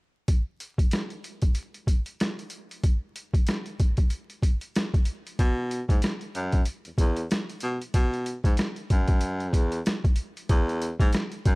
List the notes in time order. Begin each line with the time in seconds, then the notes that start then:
0.28 kick, closed hi-hat
0.60 closed hi-hat
0.78 kick, closed hi-hat
0.91 cross-stick, snare, closed hi-hat
1.10 closed hi-hat
1.24 closed hi-hat
1.42 kick, closed hi-hat
1.55 closed hi-hat
1.74 closed hi-hat
1.87 kick, closed hi-hat
2.06 closed hi-hat
2.20 cross-stick, snare, closed hi-hat
2.39 closed hi-hat
2.50 closed hi-hat
2.71 closed hi-hat
2.84 kick, closed hi-hat
3.16 closed hi-hat
3.34 kick, closed hi-hat
3.47 cross-stick, snare, closed hi-hat
3.66 closed hi-hat
3.80 kick, closed hi-hat
3.97 kick, closed hi-hat
4.10 closed hi-hat
4.30 closed hi-hat
4.43 kick, closed hi-hat
4.61 closed hi-hat
4.76 cross-stick, snare, closed hi-hat
4.94 kick, closed hi-hat
5.05 closed hi-hat
5.27 closed hi-hat
5.39 B2, kick, closed hi-hat
5.71 closed hi-hat
5.89 G#2, kick, closed hi-hat
6.02 cross-stick, snare, closed hi-hat
6.21 closed hi-hat
6.35 F#2, closed hi-hat
6.52 kick, closed hi-hat
6.66 closed hi-hat
6.85 E2, closed hi-hat
6.98 E2, kick, closed hi-hat
7.16 closed hi-hat
7.31 cross-stick, snare, closed hi-hat
7.49 closed hi-hat
7.60 B2, closed hi-hat
7.82 closed hi-hat
7.94 B2, kick, closed hi-hat
8.14 closed hi-hat
8.26 closed hi-hat
8.44 G#2, kick, closed hi-hat
8.57 cross-stick, snare, closed hi-hat
8.76 closed hi-hat
8.90 F#2, kick, closed hi-hat
9.07 kick, closed hi-hat
9.21 closed hi-hat
9.40 closed hi-hat
9.53 E2, kick, closed hi-hat
9.72 closed hi-hat
9.86 cross-stick, snare, closed hi-hat
10.04 kick, closed hi-hat
10.16 closed hi-hat
10.37 closed hi-hat
10.49 E2, kick, closed hi-hat
10.69 closed hi-hat
10.82 closed hi-hat
10.99 G#2, kick, closed hi-hat
11.13 cross-stick, snare, closed hi-hat
11.32 closed hi-hat
11.45 F#2, kick, closed hi-hat